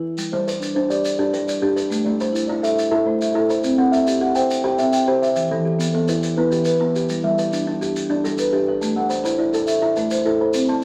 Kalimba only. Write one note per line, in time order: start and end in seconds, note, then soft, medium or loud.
0.33 0.62 G3 medium
0.48 0.91 B4 medium
0.76 1.05 D4 medium
0.90 1.33 D5 medium
1.19 1.48 D4 medium
1.19 1.61 G4 medium
1.33 1.75 B4 medium
1.62 1.91 D4 medium
1.62 2.05 G4 medium
1.76 2.20 B4 medium
2.06 2.35 A3 medium
2.21 2.64 C5 medium
2.49 2.78 E4 medium
2.63 3.06 E5 medium
2.91 3.21 E4 medium
2.91 3.34 A4 medium
3.06 3.49 C5 medium
3.35 3.64 E4 medium
3.35 3.78 A4 medium
3.50 3.93 C5 medium
3.78 4.07 C4 medium
3.92 4.35 E5 medium
4.21 4.50 G4 medium
4.35 4.79 G5 medium
4.64 4.93 G4 medium
4.64 5.07 C5 medium
4.79 5.21 E5 medium
5.08 5.36 G4 medium
5.08 5.51 C5 medium
5.22 5.65 E5 medium
5.51 5.80 E3 medium
5.65 6.08 G4 medium
5.95 6.23 B3 medium
6.09 6.52 B4 medium
6.38 6.66 B3 medium
6.38 6.79 E4 medium
6.52 6.95 G4 medium
6.81 7.09 B3 medium
6.81 7.24 E4 medium
6.96 7.38 G4 medium
7.24 7.52 G3 medium
7.39 7.81 B4 medium
7.67 7.96 D4 medium
7.81 8.24 G4 medium
8.10 8.39 D4 medium
8.24 8.67 A4 medium
8.53 8.82 D4 medium
8.53 8.96 G4 medium
8.68 9.11 B4 medium
8.96 9.25 A3 medium
9.10 9.24 C5 medium
9.25 9.68 C5 medium
9.39 9.68 E4 medium
9.55 9.97 A4 medium
9.82 10.11 E4 medium
9.97 10.40 B4 medium
10.26 10.54 E4 medium
10.26 10.69 A4 medium
10.41 10.84 C5 medium
10.69 10.84 C4 medium